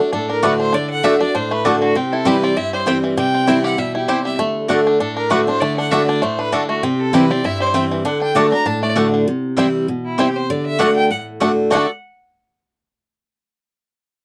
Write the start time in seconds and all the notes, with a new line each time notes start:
Already playing: A3
0.00 D4 F#4
0.13 A2 D4 A4
0.29 D4 A#4
0.43 D3 A3 D4 F#4 B4 D5 F#5
0.60 D4 C5
0.73 D3 D4 D5
0.90 F#5
1.03 D3 A3 D4 F#4 D5 E5 F#5
1.20 D4 F#4 D5
1.35 A2 D4 C5
1.51 A3 B4
1.65 D3 A3 D4 F#4 A4 D5 F#5
1.82 D3 F#4
1.95 C3 C4 G4
2.12 E4 A4
2.25 E3 G3 C4 E4 G4 B4 C5 G5
2.43 C4 D5
2.57 G2 E4 E5
2.73 G3 C5
2.86 E3 G3 C4 E4 C5 G5
3.04 E3
3.17 C3 G3 G5
3.34 C4
3.47 E3 G3 C4 E4 C5 G5
3.64 G4 F#5
3.78 B2 G3 E5
3.95 E4 G4
4.08 C3 C4 E4 G4 C5 G5
4.25 G3 E5
4.39 D3 A3
4.68 D3 A3 D4 F#4 D5 F#5
4.87 D4
4.99 A2 D4 A4
5.16 D4 A#4
5.30 D3 A3 D4 F#4 B4 D5 F#5
5.46 D4 F#4 C5
5.60 D3 A3 D5
5.77 D4 F#5
5.91 D3 A3 D4 F#4 D5 E5 F#5
6.08 D4 D5
6.22 A2 A3 C5
6.39 D4 B4
6.52 D3 A3 D4 F#4 A4 D5 F#5
6.69 A3 F#4
6.83 C3 C4 G4
6.99 A4
7.13 E3 G3 C4 E4 G4 B4 C5 G5
7.30 C4 E4 D5
7.44 G2 E4 E5
7.60 G3 C5
7.74 E3 G3 C4 E4 C5 G5
7.91 E3
8.05 D3 D4 F#5
8.22 D4 G5
8.35 D3 A3 D4 F#4 D5 F#5 A5
8.51 D4 F#4 A#5
8.66 A2 D4 A5
8.83 A3 D5
8.96 D3 A3 D4 F#4 D5 F#5
9.14 D3
9.28 C3
9.57 E3 G3 C4 E4 C5 G5
9.88 B2
10.05 E4
10.18 C3 G3 C4 E4 G4 C5 G5
10.36 C5
10.50 D3 D5
10.66 E5
10.79 D3 A3 D4 F#4 D5 F#5
10.96 G5
11.11 A2 F#5
11.40 D3 A3 D4 F#4 D5 F#5
11.70 D3 A3 D4 F#4 D5 F#5
11.75 F#4 A4